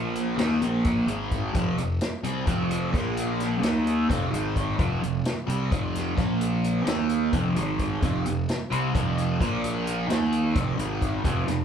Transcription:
0.00 0.35 A#1 medium
0.00 0.37 A#2 medium
0.00 0.38 F3 medium
0.00 0.37 A#3 loud
0.15 closed hi-hat medium
0.37 0.60 D#2 medium
0.37 0.60 D#3 medium
0.37 0.61 A#3 loud
0.37 0.61 D#4 medium
0.37 snare loud
0.37 closed hi-hat medium
0.62 1.05 A#1 medium
0.62 1.07 A#2 medium
0.62 1.07 F3 medium
0.62 1.08 A#3 loud
0.62 closed hi-hat medium
0.85 kick loud
0.85 closed hi-hat medium
1.06 1.50 G#1 medium
1.06 1.53 G#2 medium
1.06 1.53 D#3 medium
1.06 1.53 G#3 loud
1.06 closed hi-hat medium
1.31 kick medium
1.31 closed hi-hat medium
1.54 1.76 F1 medium
1.54 1.76 F2 loud
1.54 1.77 C3 medium
1.54 1.77 F3 loud
1.54 kick loud
1.54 closed hi-hat medium
1.77 1.99 F1 medium
1.77 1.96 F2 medium
1.77 1.96 C3 medium
1.77 closed hi-hat medium
2.01 snare loud
2.01 closed hi-hat medium
2.23 2.45 C2 medium
2.23 2.46 C3 medium
2.23 2.46 G3 medium
2.23 2.47 C4 medium
2.23 closed hi-hat medium
2.46 2.90 F1 medium
2.46 2.92 F2 medium
2.46 2.91 C3 medium
2.46 2.91 F3 medium
2.46 kick loud
2.46 closed hi-hat medium
2.71 closed hi-hat medium
2.92 3.59 A#1 medium
2.92 3.62 A#2 loud
2.92 3.62 F3 loud
2.92 3.62 A#3 loud
2.92 kick loud
2.92 closed hi-hat medium
2.96 snare soft
3.17 closed hi-hat medium
3.40 snare soft
3.40 closed hi-hat medium
3.62 4.05 D#2 medium
3.62 4.08 D#3 medium
3.62 4.08 A#3 medium
3.62 4.08 D#4 loud
3.62 snare loud
3.62 closed hi-hat medium
3.87 closed hi-hat medium
4.08 4.30 F1 medium
4.08 4.31 F2 medium
4.08 4.31 C3 medium
4.08 4.31 F3 medium
4.08 kick loud
4.08 closed hi-hat medium
4.31 4.75 G#1 medium
4.31 4.77 G#2 loud
4.31 4.77 D#3 medium
4.31 4.78 G#3 loud
4.31 closed hi-hat medium
4.56 kick medium
4.56 closed hi-hat medium
4.77 5.00 F1 medium
4.77 5.00 F2 medium
4.77 5.00 C3 loud
4.77 5.01 F3 loud
4.77 kick loud
4.77 closed hi-hat medium
5.01 5.23 F1 medium
5.01 5.19 F2 medium
5.01 5.20 C3 medium
5.01 closed hi-hat medium
5.25 snare loud
5.25 closed hi-hat medium
5.47 5.69 C2 loud
5.47 5.69 C3 medium
5.47 5.70 G3 medium
5.47 5.70 C4 loud
5.47 closed hi-hat medium
5.72 6.14 F1 loud
5.72 6.16 F2 medium
5.72 6.16 C3 loud
5.72 6.16 F3 loud
5.72 kick loud
5.72 closed hi-hat medium
5.95 snare soft
5.95 closed hi-hat medium
6.16 6.82 A#1 medium
6.16 6.86 A#2 medium
6.16 6.87 F3 medium
6.16 6.87 A#3 medium
6.16 kick medium
6.16 snare soft
6.16 closed hi-hat medium
6.41 closed hi-hat medium
6.64 closed hi-hat medium
6.86 7.29 D#2 medium
6.86 7.32 D#3 medium
6.86 7.32 A#3 loud
6.86 7.32 D#4 loud
6.86 snare loud
6.86 closed hi-hat medium
7.09 closed hi-hat medium
7.33 7.54 F1 medium
7.33 7.55 F2 medium
7.33 7.55 C3 medium
7.33 7.55 F3 loud
7.33 kick loud
7.33 closed hi-hat medium
7.56 7.99 G#1 medium
7.56 8.01 G#2 medium
7.56 8.01 D#3 medium
7.56 8.02 G#3 loud
7.56 closed hi-hat medium
7.79 kick medium
7.79 closed hi-hat medium
8.02 8.23 F1 medium
8.02 8.24 F2 medium
8.02 8.24 C3 loud
8.02 8.25 F3 loud
8.02 kick loud
8.02 closed hi-hat medium
8.25 8.48 F1 medium
8.25 8.43 F2 medium
8.25 8.44 C3 medium
8.25 closed hi-hat medium
8.49 snare loud
8.49 closed hi-hat medium
8.70 8.93 C2 medium
8.70 8.93 C3 medium
8.70 8.93 G3 medium
8.70 8.93 C4 loud
8.70 closed hi-hat medium
8.94 9.37 F1 medium
8.94 9.39 F2 medium
8.94 9.39 C3 medium
8.94 9.40 F3 medium
8.94 kick loud
8.94 closed hi-hat medium
9.18 closed hi-hat medium
9.40 10.05 A#1 medium
9.40 10.07 A#2 medium
9.40 10.08 F3 medium
9.40 10.07 A#3 loud
9.40 kick loud
9.40 closed hi-hat medium
9.64 closed hi-hat medium
9.87 closed hi-hat medium
10.07 10.52 D#2 medium
10.07 10.54 D#3 medium
10.07 10.54 A#3 medium
10.07 10.54 D#4 loud
10.07 snare loud
10.07 closed hi-hat medium
10.32 closed hi-hat medium
10.54 10.77 F1 loud
10.54 10.77 F2 medium
10.54 10.78 C3 loud
10.54 10.78 F3 medium
10.54 kick loud
10.54 closed hi-hat medium
10.77 11.20 G#1 medium
10.77 11.23 G#2 medium
10.77 11.23 D#3 loud
10.77 11.23 G#3 medium
10.77 closed hi-hat medium
11.02 kick medium
11.02 closed hi-hat medium
11.24 11.45 F1 loud
11.24 11.46 F2 medium
11.24 11.46 C3 medium
11.24 11.47 F3 loud
11.24 kick loud
11.24 closed hi-hat medium
11.47 11.65 F1 medium
11.47 11.65 F2 medium
11.47 11.65 C3 medium
11.47 snare soft
11.47 closed hi-hat medium

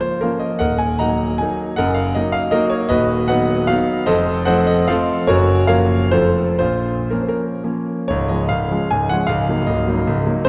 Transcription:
0.00 0.18 F3 medium
0.00 0.19 A#3 soft
0.00 0.19 F4 medium
0.00 0.22 C5 loud
0.21 0.57 F3 medium
0.21 0.58 A#3 medium
0.21 0.41 C#4 medium
0.21 0.41 F4 medium
0.21 0.41 A#4 medium
0.39 0.59 D#5 medium
0.59 0.99 D#1 medium
0.59 0.99 D#2 medium
0.59 0.79 A#4 medium
0.59 0.79 D#5 medium
0.59 0.79 F#5 loud
0.78 1.00 G#5 loud
0.99 1.37 F#3 medium
0.99 1.37 A#3 medium
0.99 1.37 D#4 medium
0.99 1.37 D#5 medium
0.99 1.37 F#5 medium
0.99 1.40 A#5 loud
1.38 1.74 F#3 medium
1.38 1.74 A#3 medium
1.38 1.75 D#4 medium
1.38 1.77 G#5 loud
1.76 2.15 F#1 medium
1.76 2.15 F#2 medium
1.76 1.95 A#4 loud
1.76 1.95 D#5 medium
1.76 1.95 F#5 loud
1.94 2.15 F5 medium
2.15 2.50 F#3 medium
2.15 2.51 A#3 medium
2.15 2.51 D#4 medium
2.15 2.35 D#5 loud
2.32 2.53 F5 loud
2.51 2.86 F#3 medium
2.51 2.87 A#3 medium
2.51 2.87 D#4 medium
2.51 2.70 F#4 medium
2.51 2.70 A#4 medium
2.51 2.71 D#5 loud
2.70 2.89 C#5 loud
2.89 3.28 D#1 medium
2.89 3.28 D#2 medium
2.89 3.26 F#4 medium
2.89 3.26 B4 medium
2.89 3.28 D#5 loud
3.28 3.65 F#3 medium
3.28 3.66 B3 medium
3.28 3.65 D#4 medium
3.28 3.66 B4 medium
3.28 3.66 D#5 loud
3.28 3.68 F#5 loud
3.67 4.04 F#3 medium
3.67 4.04 B3 medium
3.67 4.04 D#4 medium
3.67 4.07 F5 loud
4.06 4.46 F1 medium
4.06 4.46 F2 loud
4.06 4.45 A4 loud
4.06 4.44 C5 loud
4.06 4.45 D#5 loud
4.45 4.86 F3 medium
4.45 4.86 A3 medium
4.45 4.86 C4 medium
4.45 4.67 C5 loud
4.45 4.65 D#5 loud
4.45 4.68 F#5 loud
4.67 4.89 D#5 loud
4.88 5.25 F3 medium
4.88 5.25 A3 medium
4.88 5.26 C4 medium
4.88 5.26 A4 loud
4.88 5.26 C5 medium
4.88 5.28 F5 loud
5.27 5.68 F#1 medium
5.27 5.68 F#2 medium
5.27 5.66 F#4 loud
5.27 5.66 A#4 loud
5.27 5.67 C#5 loud
5.67 6.10 F3 medium
5.67 6.10 A#3 medium
5.67 6.10 A#4 loud
5.67 6.10 C#5 medium
5.67 6.13 F5 loud
6.11 6.58 F1 medium
6.11 6.58 F2 medium
6.11 6.56 F3 medium
6.11 6.56 A3 medium
6.11 6.56 C4 medium
6.11 6.56 F4 medium
6.11 6.56 A4 medium
6.11 6.57 C5 loud
6.59 7.10 A#1 medium
6.59 7.10 A#2 medium
6.59 7.08 F4 medium
6.59 7.11 C5 loud
7.11 7.59 F3 medium
7.11 7.59 A#3 medium
7.11 7.60 C#4 medium
7.11 7.20 A#4 medium
7.22 7.30 C5 medium
7.28 7.62 A#4 medium
7.63 8.06 F3 medium
7.63 8.06 A#3 medium
7.63 8.06 C#4 medium
8.08 8.29 C#1 medium
8.08 8.29 C#2 medium
8.08 8.29 C#5 loud
8.28 8.49 F3 medium
8.28 8.49 G#3 medium
8.28 8.49 C#4 medium
8.28 8.50 D#5 medium
8.49 8.71 C#1 medium
8.49 8.71 C#2 medium
8.49 8.90 F5 loud
8.71 8.89 F3 medium
8.71 8.89 G#3 medium
8.71 8.90 C#4 medium
8.91 9.11 C#1 medium
8.91 9.10 C#2 medium
8.91 9.10 G#5 loud
9.09 9.28 F3 medium
9.09 9.28 G#3 medium
9.09 9.28 C#4 medium
9.09 9.29 F#5 loud
9.27 9.47 C#1 medium
9.27 9.47 C#2 medium
9.27 9.66 F5 loud
9.49 9.66 F#3 medium
9.49 9.66 A#3 medium
9.49 9.66 D#4 medium
9.66 9.87 C#1 medium
9.66 9.87 C#2 medium
9.66 10.25 D#5 medium
9.88 10.05 F#3 medium
9.88 10.05 A#3 medium
9.88 10.06 D#4 medium
10.07 10.25 C#1 medium
10.07 10.25 C#2 medium
10.27 10.43 F#3 medium
10.27 10.43 A#3 medium
10.27 10.44 D#4 medium
10.45 10.49 C5 loud

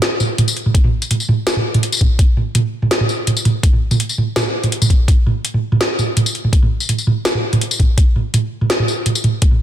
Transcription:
0.02 snare loud
0.02 closed hi-hat medium
0.20 mid tom medium
0.20 tambourine soft
0.38 closed hi-hat medium
0.38 mid tom medium
0.48 tambourine medium
0.57 closed hi-hat soft
0.66 mid tom medium
0.74 kick loud
0.74 closed hi-hat medium
0.84 mid tom medium
1.02 closed hi-hat soft
1.02 tambourine soft
1.11 closed hi-hat medium
1.11 mid tom medium
1.20 tambourine soft
1.29 mid tom medium
1.47 snare loud
1.47 closed hi-hat medium
1.47 tambourine medium
1.56 mid tom medium
1.74 closed hi-hat soft
1.74 mid tom medium
1.83 closed hi-hat medium
1.92 tambourine medium
1.95 tambourine medium
1.97 tambourine soft
1.99 kick medium
1.99 closed hi-hat soft
1.99 mid tom medium
1.99 tambourine soft
2.19 kick loud
2.19 closed hi-hat medium
2.37 mid tom medium
2.55 closed hi-hat medium
2.55 mid tom medium
2.82 mid tom medium
2.91 snare loud
2.91 closed hi-hat medium
3.00 mid tom medium
3.09 tambourine soft
3.27 closed hi-hat medium
3.27 mid tom medium
3.37 tambourine medium
3.45 closed hi-hat soft
3.45 mid tom medium
3.63 kick loud
3.63 closed hi-hat medium
3.73 mid tom medium
3.91 mid tom medium
3.91 tambourine soft
4.00 closed hi-hat medium
4.09 tambourine soft
4.18 mid tom medium
4.36 snare loud
4.36 closed hi-hat medium
4.36 mid tom medium
4.36 tambourine medium
4.64 closed hi-hat soft
4.64 mid tom medium
4.72 closed hi-hat medium
4.82 mid tom medium
4.82 tambourine medium
4.90 kick medium
4.90 closed hi-hat soft
5.08 kick loud
5.08 closed hi-hat medium
5.08 mid tom medium
5.27 mid tom medium
5.45 closed hi-hat medium
5.54 mid tom medium
5.72 mid tom medium
5.81 snare loud
5.81 closed hi-hat medium
5.99 mid tom soft
5.99 tambourine soft
6.17 closed hi-hat medium
6.17 mid tom medium
6.26 tambourine medium
6.35 closed hi-hat soft
6.44 mid tom medium
6.53 kick loud
6.53 closed hi-hat medium
6.63 mid tom medium
6.80 tambourine soft
6.89 closed hi-hat medium
6.89 mid tom soft
6.98 tambourine soft
7.07 mid tom medium
7.25 snare loud
7.25 closed hi-hat medium
7.25 tambourine medium
7.35 mid tom medium
7.53 closed hi-hat soft
7.53 mid tom medium
7.61 closed hi-hat medium
7.71 tambourine medium
7.79 kick medium
7.79 closed hi-hat soft
7.79 mid tom soft
7.98 kick loud
7.98 closed hi-hat medium
8.16 mid tom medium
8.34 closed hi-hat medium
8.34 mid tom medium
8.61 mid tom medium
8.70 snare loud
8.70 closed hi-hat medium
8.79 mid tom medium
8.88 tambourine soft
9.06 closed hi-hat medium
9.06 mid tom medium
9.15 tambourine medium
9.24 closed hi-hat soft
9.24 mid tom medium
9.42 kick loud
9.42 closed hi-hat medium
9.51 mid tom medium

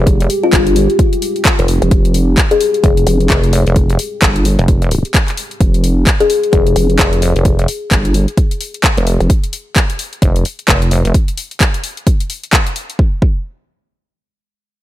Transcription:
0.00 0.28 F1 loud
0.00 7.41 G#3 medium
0.00 7.41 C4 medium
0.00 7.41 G4 medium
0.07 kick loud
0.07 closed hi-hat medium
0.20 closed hi-hat medium
0.30 open hi-hat loud
0.44 0.76 F4 medium
0.53 0.87 G1 loud
0.53 kick loud
0.53 clap loud
0.53 closed hi-hat medium
0.67 closed hi-hat medium
0.76 open hi-hat loud
0.90 closed hi-hat soft
0.99 kick loud
0.99 closed hi-hat medium
1.13 closed hi-hat medium
1.22 open hi-hat loud
1.36 closed hi-hat soft
1.45 kick loud
1.45 clap loud
1.45 closed hi-hat medium
1.59 1.80 F1 loud
1.59 closed hi-hat medium
1.68 open hi-hat loud
1.82 1.90 F1 medium
1.82 closed hi-hat soft
1.91 2.36 F1 loud
1.91 kick loud
1.91 closed hi-hat medium
2.05 closed hi-hat medium
2.14 open hi-hat loud
2.37 kick loud
2.37 clap loud
2.37 closed hi-hat medium
2.51 2.61 G#4 medium
2.51 closed hi-hat medium
2.61 open hi-hat loud
2.74 closed hi-hat soft
2.84 3.05 F1 loud
2.84 kick loud
2.84 closed hi-hat medium
2.97 closed hi-hat medium
3.07 3.28 F1 loud
3.07 open hi-hat loud
3.20 closed hi-hat soft
3.30 3.64 F1 loud
3.30 kick loud
3.30 clap loud
3.30 closed hi-hat medium
3.44 closed hi-hat medium
3.53 open hi-hat loud
3.67 3.98 F1 loud
3.67 closed hi-hat soft
3.76 kick loud
3.76 closed hi-hat medium
3.90 closed hi-hat medium
3.99 open hi-hat loud
4.22 4.57 G1 loud
4.22 kick loud
4.22 clap loud
4.22 closed hi-hat medium
4.36 closed hi-hat medium
4.45 open hi-hat loud
4.59 5.03 F1 loud
4.59 closed hi-hat soft
4.68 kick loud
4.68 closed hi-hat medium
4.82 closed hi-hat medium
4.91 open hi-hat loud
5.05 closed hi-hat soft
5.14 kick loud
5.14 clap loud
5.14 closed hi-hat medium
5.28 clap soft
5.28 closed hi-hat medium
5.37 open hi-hat loud
5.51 closed hi-hat soft
5.61 6.05 F1 loud
5.61 kick loud
5.61 closed hi-hat medium
5.74 closed hi-hat medium
5.84 open hi-hat loud
6.07 kick loud
6.07 clap loud
6.07 closed hi-hat medium
6.20 6.31 G#4 medium
6.20 closed hi-hat medium
6.30 open hi-hat loud
6.43 closed hi-hat soft
6.53 6.74 F1 loud
6.53 kick loud
6.53 closed hi-hat medium
6.67 closed hi-hat medium
6.76 6.98 F1 loud
6.76 open hi-hat loud
6.90 closed hi-hat soft
6.99 7.34 F1 loud
6.99 kick loud
6.99 clap loud
6.99 closed hi-hat medium
7.13 closed hi-hat medium
7.22 open hi-hat loud
7.36 7.67 F1 loud
7.36 closed hi-hat soft
7.45 kick loud
7.45 closed hi-hat medium
7.59 closed hi-hat medium
7.68 open hi-hat loud
7.91 8.26 G1 loud
7.91 kick loud
7.91 clap loud
7.91 closed hi-hat medium
8.05 closed hi-hat medium
8.14 open hi-hat loud
8.28 closed hi-hat soft
8.37 kick loud
8.37 closed hi-hat medium
8.51 closed hi-hat medium
8.61 open hi-hat loud
8.74 closed hi-hat soft
8.84 kick loud
8.84 clap loud
8.84 closed hi-hat medium
8.97 9.18 F1 loud
8.97 closed hi-hat medium
9.07 open hi-hat loud
9.20 9.28 F1 medium
9.20 closed hi-hat soft
9.30 kick loud
9.30 closed hi-hat medium
9.44 closed hi-hat medium
9.53 open hi-hat loud
9.76 kick loud
9.76 clap loud
9.76 closed hi-hat medium
9.90 closed hi-hat medium
9.99 open hi-hat loud
10.13 closed hi-hat soft
10.22 10.44 F1 loud
10.22 kick loud
10.22 closed hi-hat medium
10.36 closed hi-hat medium
10.45 open hi-hat loud
10.59 closed hi-hat soft
10.68 11.03 F1 loud
10.68 kick loud
10.68 clap loud
10.68 closed hi-hat medium
10.82 closed hi-hat medium
10.91 open hi-hat loud
11.05 11.13 F1 loud
11.05 closed hi-hat soft
11.14 kick loud
11.14 closed hi-hat medium
11.28 closed hi-hat medium
11.38 open hi-hat loud
11.51 closed hi-hat soft
11.61 kick loud
11.61 clap loud
11.61 closed hi-hat medium
11.74 closed hi-hat medium
11.84 open hi-hat loud
11.97 closed hi-hat soft
12.07 kick loud
12.07 closed hi-hat medium
12.20 closed hi-hat medium
12.30 open hi-hat loud
12.43 closed hi-hat soft
12.53 kick loud
12.53 clap loud
12.53 closed hi-hat medium
12.67 closed hi-hat medium
12.76 open hi-hat loud
12.90 closed hi-hat soft
12.99 kick loud
13.22 kick loud

